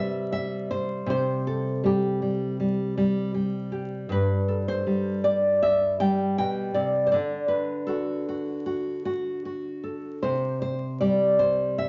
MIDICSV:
0, 0, Header, 1, 2, 480
1, 0, Start_track
1, 0, Tempo, 758534
1, 687, Time_signature, 4, 2, 24, 8
1, 5477, Tempo, 778210
1, 7471, End_track
2, 0, Start_track
2, 0, Title_t, "Nylon-string guitar"
2, 0, Program_c, 0, 24
2, 0, Note_on_c, 0, 48, 72
2, 0, Note_on_c, 0, 55, 66
2, 0, Note_on_c, 0, 64, 40
2, 0, Note_on_c, 0, 71, 88
2, 0, Note_on_c, 0, 76, 104
2, 198, Note_off_c, 0, 76, 0
2, 205, Note_off_c, 0, 71, 0
2, 206, Note_on_c, 0, 76, 103
2, 445, Note_off_c, 0, 76, 0
2, 447, Note_on_c, 0, 72, 86
2, 651, Note_off_c, 0, 48, 0
2, 654, Note_off_c, 0, 64, 0
2, 673, Note_on_c, 0, 48, 79
2, 688, Note_off_c, 0, 72, 0
2, 696, Note_on_c, 0, 72, 85
2, 931, Note_on_c, 0, 69, 82
2, 1160, Note_off_c, 0, 55, 0
2, 1163, Note_on_c, 0, 55, 56
2, 1173, Note_off_c, 0, 72, 0
2, 1176, Note_on_c, 0, 67, 73
2, 1402, Note_off_c, 0, 55, 0
2, 1405, Note_on_c, 0, 55, 46
2, 1641, Note_off_c, 0, 55, 0
2, 1643, Note_on_c, 0, 55, 49
2, 1652, Note_off_c, 0, 69, 0
2, 1875, Note_off_c, 0, 55, 0
2, 1882, Note_on_c, 0, 55, 71
2, 2109, Note_off_c, 0, 55, 0
2, 2116, Note_on_c, 0, 55, 45
2, 2346, Note_off_c, 0, 67, 0
2, 2354, Note_on_c, 0, 67, 48
2, 2572, Note_off_c, 0, 67, 0
2, 2573, Note_off_c, 0, 48, 0
2, 2589, Note_on_c, 0, 43, 79
2, 2607, Note_on_c, 0, 71, 88
2, 2837, Note_on_c, 0, 69, 44
2, 2960, Note_off_c, 0, 71, 0
2, 2963, Note_on_c, 0, 72, 94
2, 3072, Note_off_c, 0, 55, 0
2, 3080, Note_on_c, 0, 55, 57
2, 3314, Note_off_c, 0, 72, 0
2, 3316, Note_on_c, 0, 74, 97
2, 3560, Note_on_c, 0, 76, 98
2, 3794, Note_off_c, 0, 55, 0
2, 3795, Note_off_c, 0, 76, 0
2, 3797, Note_on_c, 0, 79, 110
2, 3801, Note_on_c, 0, 55, 64
2, 4031, Note_off_c, 0, 79, 0
2, 4033, Note_off_c, 0, 43, 0
2, 4039, Note_off_c, 0, 74, 0
2, 4039, Note_on_c, 0, 79, 104
2, 4040, Note_on_c, 0, 47, 60
2, 4268, Note_on_c, 0, 74, 90
2, 4269, Note_off_c, 0, 47, 0
2, 4272, Note_on_c, 0, 48, 57
2, 4469, Note_off_c, 0, 74, 0
2, 4472, Note_on_c, 0, 72, 71
2, 4487, Note_off_c, 0, 69, 0
2, 4501, Note_off_c, 0, 72, 0
2, 4503, Note_on_c, 0, 74, 94
2, 4516, Note_off_c, 0, 48, 0
2, 4517, Note_on_c, 0, 50, 79
2, 4519, Note_off_c, 0, 79, 0
2, 4520, Note_off_c, 0, 55, 0
2, 4733, Note_off_c, 0, 74, 0
2, 4735, Note_on_c, 0, 71, 72
2, 4978, Note_on_c, 0, 69, 66
2, 4987, Note_on_c, 0, 66, 53
2, 5231, Note_off_c, 0, 66, 0
2, 5243, Note_on_c, 0, 66, 40
2, 5467, Note_off_c, 0, 71, 0
2, 5472, Note_off_c, 0, 66, 0
2, 5480, Note_on_c, 0, 66, 44
2, 5716, Note_off_c, 0, 66, 0
2, 5723, Note_on_c, 0, 66, 69
2, 5962, Note_off_c, 0, 66, 0
2, 5969, Note_on_c, 0, 66, 42
2, 6193, Note_off_c, 0, 69, 0
2, 6205, Note_on_c, 0, 69, 41
2, 6417, Note_off_c, 0, 69, 0
2, 6420, Note_off_c, 0, 66, 0
2, 6443, Note_off_c, 0, 50, 0
2, 6445, Note_on_c, 0, 72, 80
2, 6454, Note_on_c, 0, 48, 72
2, 6680, Note_off_c, 0, 72, 0
2, 6688, Note_on_c, 0, 72, 74
2, 6925, Note_off_c, 0, 72, 0
2, 6927, Note_on_c, 0, 74, 86
2, 6932, Note_on_c, 0, 55, 61
2, 7162, Note_off_c, 0, 74, 0
2, 7165, Note_on_c, 0, 72, 88
2, 7401, Note_off_c, 0, 72, 0
2, 7406, Note_on_c, 0, 76, 102
2, 7471, Note_off_c, 0, 48, 0
2, 7471, Note_off_c, 0, 55, 0
2, 7471, Note_off_c, 0, 76, 0
2, 7471, End_track
0, 0, End_of_file